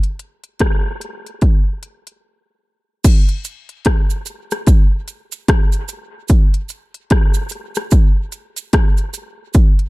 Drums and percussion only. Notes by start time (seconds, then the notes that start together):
0.03 closed hi-hat
0.19 closed hi-hat
0.44 closed hi-hat
0.59 kick, cross-stick, closed hi-hat
1.01 closed hi-hat
1.26 closed hi-hat
1.41 kick, closed hi-hat
1.83 closed hi-hat
2.07 closed hi-hat
3.04 kick, closed hi-hat, crash, cabasa
3.29 closed hi-hat
3.44 closed hi-hat, cabasa
3.69 closed hi-hat
3.85 kick, cross-stick, closed hi-hat
4.10 cabasa
4.26 closed hi-hat, cabasa
4.51 cross-stick, closed hi-hat, cabasa
4.67 kick, closed hi-hat, cabasa
5.08 closed hi-hat, cabasa
5.32 closed hi-hat, cabasa
5.48 kick, cross-stick, closed hi-hat
5.72 closed hi-hat, cabasa
5.88 closed hi-hat, cabasa
6.28 kick, closed hi-hat, cabasa
6.54 closed hi-hat
6.69 closed hi-hat, cabasa
6.94 closed hi-hat
7.10 kick, cross-stick, closed hi-hat
7.34 cabasa
7.49 closed hi-hat, cabasa
7.75 cross-stick, closed hi-hat, cabasa
7.91 kick, closed hi-hat, cabasa
8.32 closed hi-hat, cabasa
8.56 closed hi-hat, cabasa
8.73 kick, cross-stick, closed hi-hat
8.97 closed hi-hat, cabasa
9.14 closed hi-hat, cabasa
9.54 kick, closed hi-hat, cabasa
9.79 closed hi-hat